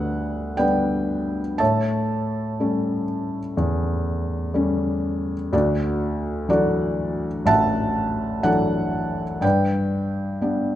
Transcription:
felt piano
Already playing: D2 G2 G3 B3 D4 G4 B4 D5 F#5
0.57 G3 B3 D4 B4 D5 G5
1.58 A2 C#5 E5 A5
2.60 G3 A3 C#4
3.57 E2
4.54 G3 A3 C#4
5.53 D2 F#4 A4 D5
6.49 E3 F#3 D4 F#4 A4 D5
7.46 A1 E5 F#5 A5
8.43 E3 F#3 D4 A4 F#5
9.41 G2 B4 D5 G5
10.41 G3 B3 D4

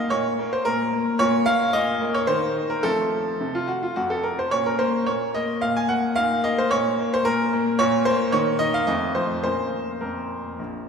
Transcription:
grand piano
Already playing: A#2 A#3 D#4 D#5 F5
0.10 A#2 C#5
0.39 A#3
0.53 C5
0.65 A#2 A#4
0.93 A#3
1.19 A#2 A#3 F4 C#5
1.46 A#3 F5
1.73 A#2 D#5
2.01 A#3
2.14 C#5
2.27 D#3 A#3 D#4 C5
2.56 D#4
2.70 A#4
2.83 F3 A3 C4 A4
3.40 C3
3.55 F4
3.68 F#4
3.83 F4
3.96 F2 F#4
4.10 A4
4.23 A#4
4.39 C5
4.51 A#2 A#3 C#4 C#5
4.66 A#4
4.79 A#3 C5
5.06 A#2 C#5
5.35 A#3 D#5
5.61 A#2 F5
5.76 G#5
5.89 A#3 F#5
6.16 A#2 A#3 D#4 F5
6.44 A#3 D#5
6.58 C5
6.71 A#2 C#5
6.99 A#3
7.14 C5
7.25 A#2 A#4
7.53 A#3
7.79 A#2 A#3 F4 C#5
8.05 A#3 C5
8.32 D#3 A#3 D#4 C#5
8.59 D#4 D#5
8.74 F5
8.87 F2 A3 C4 D#5
9.15 F3 C5
9.44 A#2 A#3 C#4 C5
10.01 F2 A#4
10.59 A#1

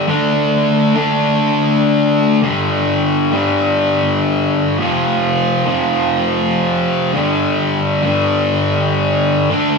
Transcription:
distorted electric guitar
0.07 D3 A3 D4
0.95 D3 A3 D4
2.42 G2 D3 G3
3.31 G2 D3 G3
4.78 F2 C3 F3
5.66 F2 C3 F3
7.13 G2 D3 G3
8.02 G2 D3 G3
9.50 D3 A3 D4

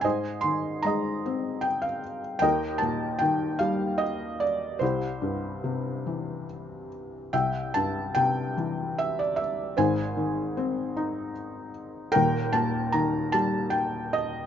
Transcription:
felt piano
0.01 G#2 C5 D#5 G#5
0.41 D#3 C6
0.83 G#3 D#5 A#5
1.26 C4
1.61 G5
1.82 F5
2.39 D#2 A#4 D#5 G5
2.78 A5
2.82 A#2
3.19 D#3 G5
3.59 G3 F5
3.98 D#5
4.40 D5
4.79 C2 E4 G4 C5
5.22 G2
5.64 C3
6.06 E3
7.33 C2 E5 G5
7.74 G2 A5
8.15 C3 G5
8.57 E3
8.98 E5
9.19 D5
9.36 E5
9.77 G#1 G#2 C5 G#5
10.17 D#3
10.57 C4
10.97 D#4
12.12 D#1 D#2 A#4 G5
12.53 A#2 A5
12.92 D#3 A#5
13.32 G3 A5
13.70 G5
14.13 D#5

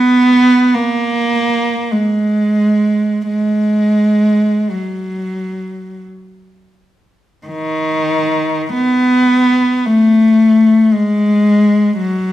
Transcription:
cello
Already playing: B3
0.74 A#3
1.92 G#3
3.27 G#3
4.70 F#3
7.47 D#3
8.73 B3
9.86 A3
10.93 G#3
11.98 F#3

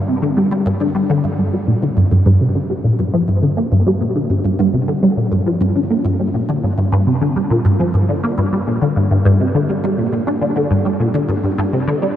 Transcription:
synth arpeggio sound
0.08 C3
0.22 D3
0.37 G3
0.51 G3
0.66 G2
0.80 D3
0.95 G3
1.10 D3
1.24 G2
1.39 G2
1.53 G3
1.68 A#2
1.83 D3
1.97 G2
2.12 G2
2.26 G2
2.41 C3
2.55 D3
2.70 G3
2.84 A#2
2.99 G2
3.14 F3
3.28 G2
3.43 D3
3.57 A#3
3.72 G2
3.86 G3
4.01 A#2
4.15 D3
4.30 G2
4.45 G2
4.59 G2
4.74 C3
4.88 D3
5.03 G3
5.17 A#2
5.32 G2
5.46 F3
5.61 G2
5.76 D3
5.90 A#3
6.05 G2
6.20 G3
6.34 A#2
6.49 D3
6.64 G2
6.78 G2
6.92 G2
7.07 C3
7.21 D3
7.36 G3
7.51 A#2
7.65 G2
7.80 F3
7.94 G2
8.09 D3
8.23 A#3
8.38 G2
8.53 G3
8.67 A#2
8.82 D3
8.96 G2
9.11 G2
9.25 G2
9.40 C3
9.55 D3
9.69 G3
9.84 G3
9.98 A#2
10.13 A#2
10.27 D4
10.42 D3
10.56 D3
10.71 G2
10.85 G3
11.00 A#2
11.14 D3
11.29 G2
11.44 G2
11.58 G2
11.73 C3
11.87 D3
12.02 G3

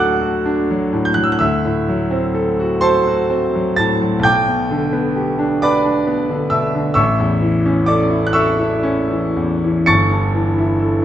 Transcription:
grand piano
Already playing: D2 A2 F#3 D4 F#4 A4 F#5 A5 D6 F#6
0.21 F#4
0.46 D4
0.70 F#3
0.93 A2
1.05 G6
1.14 F#3 F#6
1.24 E6
1.32 F#6
1.39 D2 E5 E6
1.65 A2
1.88 F#3
2.11 C4
2.34 A4
2.60 F#4
2.81 A4 C5 A5 C6
3.07 F#4
3.30 C4
3.55 F#3
3.76 A2 A5 A6
4.01 F#3
4.19 B1
4.23 G5 D6 G6
4.48 B2
4.71 D3
4.93 B3
5.16 G4
5.39 D4
5.62 B4 D5 B5 D6
5.85 D4
6.07 B3
6.30 D3
6.50 B2 E5 E6
6.74 D3
6.94 A1 E5 C#6 E6
7.20 E2
7.42 E3
7.66 C#4
7.86 A4 D5 D6
8.10 E4
8.27 F#6
8.33 A4 E5 C#6 E6
8.58 E4
8.83 C#4
9.11 E3
9.36 E2
9.64 E3
9.86 G1 C#6 A6 C#7
10.11 G2
10.35 E3
10.58 E4
10.79 A4

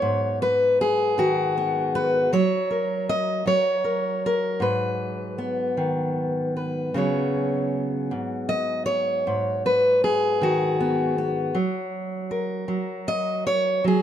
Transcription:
steel-string acoustic guitar
Already playing: F#3 B3 C#5
0.02 G#2
0.42 B4
0.81 G#4
1.18 D#3 F#4
1.57 B3
1.95 B4
2.33 F#3 C#5
2.71 A#4
3.09 D#5
3.46 F#3 C#5
3.84 A#4
4.26 A#4
4.60 G#2 B4
5.38 B3
5.77 D#3
6.57 B4
6.94 C#3 F#3 B3 G#4 C#5
8.11 G#2
8.49 D#5
8.86 C#5
9.27 G#2
9.66 B4
10.04 G#4
10.41 D#3 F#4
10.80 B3
11.18 B3
11.55 F#3
12.31 A#4
12.68 F#3
13.08 D#5
13.47 C#5
13.84 F#3 G#4

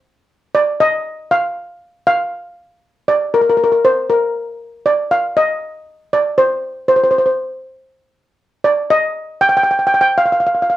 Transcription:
steel pan
0.55 D5
0.80 D#5
1.31 F5
2.07 F5
3.08 D5
3.34 A#4
3.42 A#4
3.50 A#4
3.57 A#4
3.64 A#4
3.72 A#4
3.85 C5
4.10 A#4
4.86 D5
5.11 F5
5.37 D#5
6.13 D5
6.38 C5
6.88 C5
6.96 C5
7.04 C5
7.11 C5
7.18 C5
7.26 C5
8.64 D5
8.90 D#5
9.41 G5
9.49 G5
9.57 G5
9.63 G5
9.71 G5
9.79 G5
9.87 G5
9.94 G5
10.01 G5
10.18 F5
10.26 F5
10.32 F5
10.40 F5
10.47 F5
10.55 F5
10.63 F5
10.70 F5

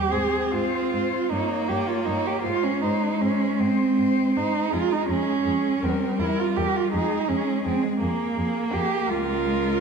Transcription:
cello
Already playing: G3 G4
0.11 G#2 C4 G#4 C5
0.51 G#2 F4 C5
0.93 G#2 C5
1.30 G2 A#3 D#4 C#5
1.68 G2 G4 C#5
1.87 F4
2.06 G2 D#4 C#5
2.27 G4
2.43 G#2 G#3 F4 C5
2.64 C#4
2.81 G#2 D#4 C5
3.20 G#2 C#4 C5
3.59 G#2 C4 C5
3.98 G#2 C5
4.35 G#2 D#4 C5
4.72 F2 G#3 F4 G#4
4.92 D#4
5.09 F2 C#4 G#4
5.45 F2 G#4
5.82 E2 G3 C4 A#4
6.18 E2 E4 A#4
6.39 F4
6.56 E2 G4 A#4
6.76 F4
6.91 F2 G#3 D#4 G#4
7.28 F2 C#4 G#4
7.64 F2 C4 G#4
7.84 G#3
8.01 F2 A#3 G#4
8.38 F2 G#4
8.71 F2 G4 G#4
9.09 C#2 G#3 F4 A#4

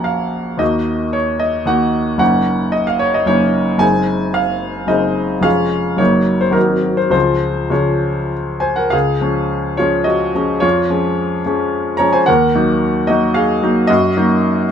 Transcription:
grand piano
Already playing: A#1 A#3 C#4 F#4 F#5 A#5
0.04 F5
0.58 D#2 A#3 D#4 F#4 D#5
1.13 C#5
1.40 D#5
1.66 D#2 A#3 D#4 F#4 F#5
2.18 F#1 A#3 C#4 D#4 F#5
2.72 D#5
2.87 F5
2.99 C#5
3.14 D#5
3.26 F#1 A#3 C#4 D#4 C#5
3.78 F#1 G#3 C4 D#4 G#5
4.34 F5
4.87 F#1 G#3 C4 D#4 D#5
5.41 F1 G#3 C#4 F4 F5
5.97 F#1 F#3 A#3 D#4 C#5
6.41 C5
6.51 G#1 F#3 C4 D#4 A#4
6.97 C5
7.10 C#2 F3 G#3 F4 C5
7.70 C#2 F3 G#3 F4 C#5
8.60 C5 G#5
8.76 A#4 F#5
8.90 C#2 G#4 F5
9.21 F3 G#3 C#4
9.77 F3 G#3 C#4 F4 C#5
10.04 F#4 D#5
10.35 F3 G#3 C#4
10.60 F2 F4 C#5
10.90 F3 G#3 C#4
11.46 F3 G#3 C#4
11.97 F3 G#3 C#4 C#5 A#5
12.13 C5 G#5
12.26 D#2 A#4 F#5
12.55 F#3 A#3 D#4
13.07 F#3 A#3 D#4 F#4 D#5
13.34 G#4 F5
13.63 F#3 A#3 D#4
13.87 F#2 F#4 D#5
14.17 F#3 A#3 D#4

